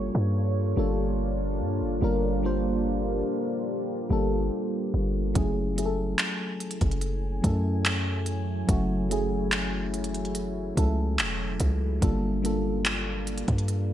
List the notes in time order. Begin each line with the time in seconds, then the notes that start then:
Already playing: G1 G3 A#3 D4 F4 G4 A4 C#5
0.15 G2
0.76 G1 G3 A#3 D4 F4 A4
1.61 G2
1.81 G1
2.01 G1 G3 A#3 D4 F4 G4 A#4
2.43 G3 A#3 D4 F4 C5
4.09 G1 G3 A#3 D4 F4 A4
4.94 G1
5.34 F#1 F#3 A3 C#4 E4 G#4 G#5, kick, closed hi-hat
5.76 F#3 A3 C#4 E4 G#4, closed hi-hat
5.86 A4
6.19 clap, closed hi-hat
6.60 closed hi-hat
6.71 closed hi-hat
6.81 F#1, kick, closed hi-hat
6.91 closed hi-hat
7.01 closed hi-hat
7.42 F#2 F#3 A3 C#4 E4 A4, kick, closed hi-hat
7.86 clap, closed hi-hat
8.26 closed hi-hat
8.67 F#1 F#3 A3 C#4 E4 F#4, kick, closed hi-hat
9.09 F#3 A3 C#4 E4 G#4, closed hi-hat
9.52 clap, closed hi-hat
9.94 closed hi-hat
10.04 closed hi-hat
10.14 closed hi-hat
10.25 closed hi-hat
10.35 closed hi-hat
10.75 C#2 F#3 A3 C#4 E4 A4, kick, closed hi-hat
11.19 E1, clap, closed hi-hat
11.60 C#2, kick, closed hi-hat
12.01 G1 G3 A#3 D4 F4 A4, kick, closed hi-hat
12.42 G3 A#3 D4 F4 A4, closed hi-hat
12.86 clap, closed hi-hat
13.27 closed hi-hat
13.38 closed hi-hat
13.48 G2, kick, closed hi-hat
13.58 closed hi-hat
13.68 closed hi-hat